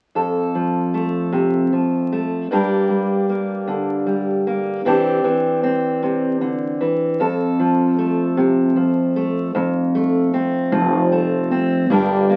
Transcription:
0.15 steel-string acoustic guitar F2 A4
0.55 steel-string acoustic guitar F3
0.94 steel-string acoustic guitar A3
1.32 steel-string acoustic guitar C3
1.72 steel-string acoustic guitar F3
2.12 steel-string acoustic guitar A3
2.51 steel-string acoustic guitar G2 G3 A#3 D4 G4
2.89 steel-string acoustic guitar G3
3.30 steel-string acoustic guitar A#3
3.67 steel-string acoustic guitar D3
4.07 steel-string acoustic guitar G3
4.47 steel-string acoustic guitar A#3
4.85 steel-string acoustic guitar C3 E3 C4 D4 G4
5.24 steel-string acoustic guitar E3
5.63 steel-string acoustic guitar C4
6.03 steel-string acoustic guitar C3
6.41 steel-string acoustic guitar D3
6.81 steel-string acoustic guitar E3
7.20 steel-string acoustic guitar F2 A4
7.59 steel-string acoustic guitar F3
7.98 steel-string acoustic guitar A3
8.37 steel-string acoustic guitar C3
8.76 steel-string acoustic guitar F3
9.16 steel-string acoustic guitar A3
9.55 upright bass F1, steel-string acoustic guitar F2
9.95 steel-string acoustic guitar A3
10.34 steel-string acoustic guitar C4
10.72 upright bass F1, steel-string acoustic guitar F3
11.12 steel-string acoustic guitar A3
11.51 steel-string acoustic guitar C4
11.90 upright bass G1, steel-string acoustic guitar G2 G3 A#3 D4 G4
12.30 steel-string acoustic guitar A#3

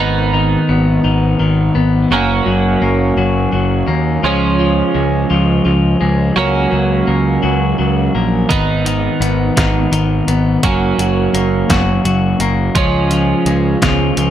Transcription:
Already playing: picked electric bass G#1, clean electric guitar D#3
0.00 clean electric guitar D#3 B3 D#4
0.34 clean electric guitar D#3
0.69 picked electric bass G#1, clean electric guitar B3
1.04 picked electric bass G#1, clean electric guitar D#3
1.40 picked electric bass G#1, clean electric guitar D#3
1.75 picked electric bass G#1, clean electric guitar B3
2.11 picked electric bass F#1, clean electric guitar F#3 A#3 C#4
2.46 picked electric bass F#1, clean electric guitar F#3
2.82 picked electric bass F#1, clean electric guitar A#3
3.17 picked electric bass F#1, clean electric guitar F#3
3.52 picked electric bass F#1, clean electric guitar F#3
3.88 picked electric bass D#2, clean electric guitar A#3
4.23 picked electric bass C#2, clean electric guitar F3 G#3 C#4
4.59 clean electric guitar F3
4.95 picked electric bass C#2, clean electric guitar G#3
5.30 picked electric bass C#2, clean electric guitar F3
5.65 picked electric bass C#2, clean electric guitar F3
6.01 picked electric bass C#2, clean electric guitar G#3
6.36 picked electric bass C#2, clean electric guitar F#3 A#3 C#4
6.71 picked electric bass C#2, clean electric guitar F#3
7.07 picked electric bass C#2, clean electric guitar A#3
7.43 picked electric bass C#2, clean electric guitar F#3
7.79 picked electric bass C#2, clean electric guitar F#3
8.15 picked electric bass A#1, clean electric guitar A#3
8.49 picked electric bass G#1, clean electric guitar D#3 B3 D#4, kick, closed hi-hat
8.85 clean electric guitar D#3, closed hi-hat
9.20 picked electric bass G#1, clean electric guitar B3, closed hi-hat
9.57 picked electric bass G#1, clean electric guitar D#3, kick, snare, closed hi-hat
9.92 picked electric bass G#1, clean electric guitar D#3, closed hi-hat
10.28 picked electric bass G#1, clean electric guitar B3, closed hi-hat
10.63 picked electric bass F#1, clean electric guitar F#3 A#3 C#4, kick, closed hi-hat
10.98 picked electric bass F#1, clean electric guitar F#3, closed hi-hat
11.34 picked electric bass F#1, clean electric guitar A#3, closed hi-hat
11.69 picked electric bass F#1, clean electric guitar F#3, kick, snare, closed hi-hat
12.05 picked electric bass F#1, clean electric guitar F#3, closed hi-hat
12.40 picked electric bass F#1, clean electric guitar A#3, closed hi-hat
12.75 picked electric bass C#2, clean electric guitar F3 G#3 C#4, kick, closed hi-hat
13.11 clean electric guitar F3, closed hi-hat
13.46 picked electric bass C#2, clean electric guitar G#3, closed hi-hat
13.82 picked electric bass C#2, clean electric guitar F3, kick, snare, closed hi-hat
14.17 picked electric bass C#2, clean electric guitar F3, closed hi-hat

